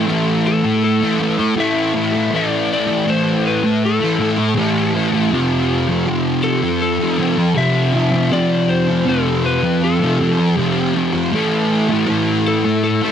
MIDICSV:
0, 0, Header, 1, 4, 480
1, 0, Start_track
1, 0, Tempo, 750939
1, 1487, Time_signature, 4, 2, 24, 8
1, 8384, End_track
2, 0, Start_track
2, 0, Title_t, "Lead electric guitar"
2, 0, Program_c, 0, 29
2, 304, Note_on_c, 0, 69, 81
2, 532, Note_off_c, 0, 69, 0
2, 540, Note_on_c, 0, 69, 91
2, 1023, Note_on_c, 0, 76, 109
2, 1027, Note_off_c, 0, 69, 0
2, 1507, Note_off_c, 0, 76, 0
2, 1510, Note_on_c, 0, 74, 94
2, 1739, Note_off_c, 0, 74, 0
2, 1747, Note_on_c, 0, 74, 101
2, 1980, Note_on_c, 0, 72, 98
2, 1983, Note_off_c, 0, 74, 0
2, 2216, Note_off_c, 0, 72, 0
2, 2218, Note_on_c, 0, 71, 87
2, 2458, Note_off_c, 0, 71, 0
2, 2464, Note_on_c, 0, 69, 79
2, 2937, Note_off_c, 0, 69, 0
2, 2937, Note_on_c, 0, 67, 79
2, 3148, Note_off_c, 0, 67, 0
2, 4116, Note_on_c, 0, 69, 88
2, 4350, Note_off_c, 0, 69, 0
2, 4358, Note_on_c, 0, 69, 91
2, 4843, Note_on_c, 0, 76, 97
2, 4856, Note_off_c, 0, 69, 0
2, 5322, Note_off_c, 0, 76, 0
2, 5324, Note_on_c, 0, 74, 103
2, 5557, Note_on_c, 0, 72, 98
2, 5573, Note_off_c, 0, 74, 0
2, 5809, Note_off_c, 0, 72, 0
2, 5811, Note_on_c, 0, 69, 93
2, 6044, Note_off_c, 0, 69, 0
2, 6047, Note_on_c, 0, 71, 88
2, 6289, Note_off_c, 0, 71, 0
2, 6292, Note_on_c, 0, 69, 80
2, 6771, Note_off_c, 0, 69, 0
2, 6771, Note_on_c, 0, 67, 80
2, 6986, Note_off_c, 0, 67, 0
2, 7975, Note_on_c, 0, 69, 87
2, 8200, Note_off_c, 0, 69, 0
2, 8207, Note_on_c, 0, 69, 101
2, 8384, Note_off_c, 0, 69, 0
2, 8384, End_track
3, 0, Start_track
3, 0, Title_t, "Distorted electric guitar"
3, 0, Program_c, 1, 30
3, 40, Note_on_c, 1, 45, 92
3, 51, Note_on_c, 1, 52, 112
3, 62, Note_on_c, 1, 57, 103
3, 405, Note_off_c, 1, 52, 0
3, 405, Note_off_c, 1, 57, 0
3, 640, Note_on_c, 1, 57, 73
3, 644, Note_off_c, 1, 45, 0
3, 659, Note_on_c, 1, 52, 58
3, 761, Note_on_c, 1, 45, 83
3, 764, Note_off_c, 1, 52, 0
3, 772, Note_on_c, 1, 52, 81
3, 778, Note_off_c, 1, 57, 0
3, 781, Note_on_c, 1, 57, 87
3, 882, Note_off_c, 1, 52, 0
3, 883, Note_off_c, 1, 57, 0
3, 988, Note_off_c, 1, 45, 0
3, 996, Note_on_c, 1, 45, 106
3, 1009, Note_on_c, 1, 52, 115
3, 1018, Note_on_c, 1, 57, 106
3, 1227, Note_off_c, 1, 45, 0
3, 1235, Note_on_c, 1, 45, 75
3, 1237, Note_off_c, 1, 52, 0
3, 1245, Note_on_c, 1, 52, 80
3, 1252, Note_off_c, 1, 57, 0
3, 1255, Note_on_c, 1, 57, 99
3, 1355, Note_off_c, 1, 57, 0
3, 1357, Note_on_c, 1, 57, 75
3, 1371, Note_off_c, 1, 52, 0
3, 1379, Note_on_c, 1, 52, 58
3, 1466, Note_off_c, 1, 45, 0
3, 1477, Note_on_c, 1, 45, 102
3, 1478, Note_off_c, 1, 52, 0
3, 1488, Note_on_c, 1, 52, 95
3, 1494, Note_off_c, 1, 57, 0
3, 1496, Note_on_c, 1, 57, 107
3, 1828, Note_off_c, 1, 57, 0
3, 1836, Note_on_c, 1, 57, 76
3, 1848, Note_off_c, 1, 52, 0
3, 1856, Note_on_c, 1, 52, 57
3, 1946, Note_off_c, 1, 45, 0
3, 1954, Note_on_c, 1, 45, 88
3, 1958, Note_off_c, 1, 52, 0
3, 1966, Note_on_c, 1, 52, 109
3, 1969, Note_off_c, 1, 57, 0
3, 1976, Note_on_c, 1, 57, 103
3, 2316, Note_off_c, 1, 57, 0
3, 2322, Note_off_c, 1, 52, 0
3, 2557, Note_on_c, 1, 57, 75
3, 2559, Note_off_c, 1, 45, 0
3, 2578, Note_on_c, 1, 52, 63
3, 2672, Note_on_c, 1, 45, 74
3, 2677, Note_off_c, 1, 52, 0
3, 2685, Note_on_c, 1, 52, 80
3, 2687, Note_off_c, 1, 57, 0
3, 2695, Note_on_c, 1, 57, 84
3, 2790, Note_off_c, 1, 57, 0
3, 2795, Note_off_c, 1, 52, 0
3, 2900, Note_off_c, 1, 45, 0
3, 2908, Note_on_c, 1, 45, 91
3, 2920, Note_on_c, 1, 52, 103
3, 2932, Note_on_c, 1, 57, 109
3, 3142, Note_off_c, 1, 45, 0
3, 3150, Note_on_c, 1, 45, 71
3, 3154, Note_off_c, 1, 52, 0
3, 3161, Note_on_c, 1, 52, 76
3, 3164, Note_off_c, 1, 57, 0
3, 3171, Note_on_c, 1, 57, 83
3, 3264, Note_off_c, 1, 57, 0
3, 3271, Note_on_c, 1, 57, 70
3, 3284, Note_off_c, 1, 52, 0
3, 3292, Note_on_c, 1, 52, 57
3, 3382, Note_off_c, 1, 45, 0
3, 3383, Note_off_c, 1, 57, 0
3, 3393, Note_on_c, 1, 41, 87
3, 3394, Note_off_c, 1, 52, 0
3, 3401, Note_on_c, 1, 48, 104
3, 3413, Note_on_c, 1, 53, 105
3, 3753, Note_off_c, 1, 53, 0
3, 3755, Note_on_c, 1, 53, 70
3, 3767, Note_off_c, 1, 48, 0
3, 3774, Note_on_c, 1, 48, 60
3, 3872, Note_off_c, 1, 41, 0
3, 3875, Note_on_c, 1, 41, 88
3, 3878, Note_off_c, 1, 48, 0
3, 3886, Note_on_c, 1, 48, 98
3, 3890, Note_off_c, 1, 53, 0
3, 3893, Note_on_c, 1, 53, 95
3, 4227, Note_off_c, 1, 53, 0
3, 4233, Note_off_c, 1, 48, 0
3, 4467, Note_on_c, 1, 53, 73
3, 4480, Note_off_c, 1, 41, 0
3, 4489, Note_on_c, 1, 48, 54
3, 4591, Note_on_c, 1, 41, 73
3, 4595, Note_off_c, 1, 48, 0
3, 4603, Note_off_c, 1, 53, 0
3, 4603, Note_on_c, 1, 48, 84
3, 4610, Note_on_c, 1, 53, 89
3, 4706, Note_off_c, 1, 53, 0
3, 4712, Note_off_c, 1, 48, 0
3, 4819, Note_off_c, 1, 41, 0
3, 4827, Note_on_c, 1, 41, 91
3, 4836, Note_on_c, 1, 48, 116
3, 4848, Note_on_c, 1, 53, 107
3, 5060, Note_off_c, 1, 41, 0
3, 5068, Note_on_c, 1, 41, 77
3, 5071, Note_off_c, 1, 48, 0
3, 5079, Note_on_c, 1, 48, 88
3, 5080, Note_off_c, 1, 53, 0
3, 5087, Note_on_c, 1, 53, 85
3, 5182, Note_off_c, 1, 53, 0
3, 5190, Note_on_c, 1, 53, 78
3, 5204, Note_off_c, 1, 48, 0
3, 5212, Note_on_c, 1, 48, 60
3, 5300, Note_off_c, 1, 41, 0
3, 5307, Note_on_c, 1, 41, 89
3, 5310, Note_off_c, 1, 48, 0
3, 5318, Note_on_c, 1, 48, 105
3, 5322, Note_off_c, 1, 53, 0
3, 5330, Note_on_c, 1, 53, 114
3, 5664, Note_off_c, 1, 53, 0
3, 5672, Note_on_c, 1, 53, 72
3, 5684, Note_off_c, 1, 48, 0
3, 5692, Note_on_c, 1, 48, 58
3, 5781, Note_off_c, 1, 41, 0
3, 5789, Note_on_c, 1, 41, 99
3, 5791, Note_off_c, 1, 48, 0
3, 5799, Note_on_c, 1, 48, 87
3, 5801, Note_off_c, 1, 53, 0
3, 5809, Note_on_c, 1, 53, 109
3, 6149, Note_off_c, 1, 53, 0
3, 6152, Note_off_c, 1, 48, 0
3, 6390, Note_on_c, 1, 53, 64
3, 6399, Note_off_c, 1, 41, 0
3, 6412, Note_on_c, 1, 48, 63
3, 6514, Note_on_c, 1, 41, 72
3, 6516, Note_off_c, 1, 48, 0
3, 6524, Note_on_c, 1, 48, 74
3, 6528, Note_off_c, 1, 53, 0
3, 6535, Note_on_c, 1, 53, 78
3, 6630, Note_off_c, 1, 53, 0
3, 6635, Note_off_c, 1, 48, 0
3, 6745, Note_off_c, 1, 41, 0
3, 6753, Note_on_c, 1, 41, 95
3, 6762, Note_on_c, 1, 48, 98
3, 6771, Note_on_c, 1, 53, 115
3, 6988, Note_off_c, 1, 41, 0
3, 6996, Note_on_c, 1, 41, 83
3, 6997, Note_off_c, 1, 48, 0
3, 7005, Note_on_c, 1, 48, 84
3, 7006, Note_off_c, 1, 53, 0
3, 7014, Note_on_c, 1, 53, 88
3, 7104, Note_off_c, 1, 53, 0
3, 7111, Note_on_c, 1, 53, 73
3, 7123, Note_off_c, 1, 48, 0
3, 7131, Note_on_c, 1, 48, 59
3, 7227, Note_off_c, 1, 53, 0
3, 7229, Note_off_c, 1, 41, 0
3, 7230, Note_off_c, 1, 48, 0
3, 7233, Note_on_c, 1, 45, 92
3, 7243, Note_on_c, 1, 52, 107
3, 7252, Note_on_c, 1, 57, 110
3, 7591, Note_off_c, 1, 57, 0
3, 7598, Note_on_c, 1, 57, 78
3, 7616, Note_off_c, 1, 52, 0
3, 7619, Note_on_c, 1, 52, 70
3, 7705, Note_off_c, 1, 45, 0
3, 7713, Note_on_c, 1, 45, 90
3, 7721, Note_off_c, 1, 52, 0
3, 7723, Note_on_c, 1, 52, 105
3, 7726, Note_off_c, 1, 57, 0
3, 7733, Note_on_c, 1, 57, 101
3, 8074, Note_off_c, 1, 57, 0
3, 8080, Note_off_c, 1, 52, 0
3, 8321, Note_on_c, 1, 57, 82
3, 8325, Note_off_c, 1, 45, 0
3, 8338, Note_on_c, 1, 52, 67
3, 8384, Note_off_c, 1, 52, 0
3, 8384, Note_off_c, 1, 57, 0
3, 8384, End_track
4, 0, Start_track
4, 0, Title_t, "Muted distorted electric guitar strokes"
4, 407, Note_on_c, 9, 29, 49
4, 471, Note_off_c, 9, 29, 0
4, 886, Note_on_c, 9, 29, 51
4, 950, Note_off_c, 9, 29, 0
4, 2324, Note_on_c, 9, 29, 49
4, 2388, Note_off_c, 9, 29, 0
4, 2798, Note_on_c, 9, 29, 57
4, 2862, Note_off_c, 9, 29, 0
4, 4235, Note_on_c, 9, 29, 47
4, 4299, Note_off_c, 9, 29, 0
4, 4714, Note_on_c, 9, 29, 58
4, 4778, Note_off_c, 9, 29, 0
4, 6157, Note_on_c, 9, 29, 52
4, 6221, Note_off_c, 9, 29, 0
4, 6637, Note_on_c, 9, 29, 60
4, 6701, Note_off_c, 9, 29, 0
4, 8082, Note_on_c, 9, 29, 49
4, 8146, Note_off_c, 9, 29, 0
4, 8384, End_track
0, 0, End_of_file